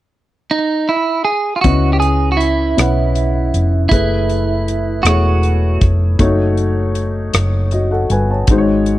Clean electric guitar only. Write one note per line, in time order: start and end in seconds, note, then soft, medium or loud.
0.51 0.90 D#4 medium
0.89 1.24 E4 medium
1.25 1.54 G#4 medium
1.56 1.61 F4 medium
1.61 1.93 F#4 medium
1.93 1.99 G4 soft
2.00 2.31 G#4 medium
2.32 2.40 F#4 medium
2.37 3.86 E4 medium
3.89 5.08 E4 medium
5.03 5.86 F#4 medium